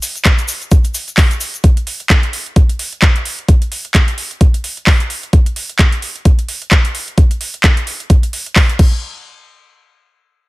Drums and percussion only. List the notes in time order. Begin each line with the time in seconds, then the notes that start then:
0.02 open hi-hat, shaker
0.16 closed hi-hat, shaker
0.24 kick, clap, closed hi-hat, shaker
0.38 closed hi-hat, shaker
0.48 open hi-hat, shaker
0.62 closed hi-hat, shaker
0.71 kick, closed hi-hat, shaker
0.84 closed hi-hat, shaker
0.95 open hi-hat, shaker
1.08 closed hi-hat, shaker
1.17 kick, clap, open hi-hat, shaker
1.31 closed hi-hat, shaker
1.41 open hi-hat, shaker
1.54 closed hi-hat, shaker
1.64 kick, closed hi-hat
1.77 closed hi-hat
1.87 open hi-hat
2.00 closed hi-hat
2.10 kick, clap, closed hi-hat
2.23 closed hi-hat
2.33 open hi-hat
2.46 closed hi-hat
2.56 kick, closed hi-hat
2.69 closed hi-hat
2.79 open hi-hat
2.93 closed hi-hat
3.02 kick, clap, closed hi-hat
3.16 closed hi-hat
3.25 open hi-hat
3.39 closed hi-hat
3.48 kick, closed hi-hat
3.62 closed hi-hat
3.72 open hi-hat
3.85 closed hi-hat
3.94 kick, clap, closed hi-hat
4.08 closed hi-hat
4.18 open hi-hat
4.31 closed hi-hat
4.41 kick, closed hi-hat
4.54 closed hi-hat
4.64 open hi-hat
4.77 closed hi-hat
4.87 kick, clap, open hi-hat
5.00 closed hi-hat
5.10 open hi-hat
5.23 closed hi-hat
5.33 kick, closed hi-hat
5.46 closed hi-hat
5.56 open hi-hat
5.69 closed hi-hat
5.79 kick, clap, closed hi-hat
5.92 closed hi-hat
6.02 open hi-hat
6.16 closed hi-hat
6.25 kick, closed hi-hat
6.39 closed hi-hat
6.49 open hi-hat
6.62 closed hi-hat
6.71 kick, clap, closed hi-hat
6.85 closed hi-hat
6.95 open hi-hat
7.08 closed hi-hat
7.18 kick, closed hi-hat
7.31 closed hi-hat
7.41 open hi-hat
7.54 closed hi-hat
7.64 kick, clap, closed hi-hat
7.77 closed hi-hat
7.87 open hi-hat
8.00 closed hi-hat
8.10 kick, closed hi-hat
8.23 closed hi-hat
8.33 open hi-hat
8.46 closed hi-hat
8.56 kick, clap, open hi-hat
8.69 closed hi-hat
8.79 kick, crash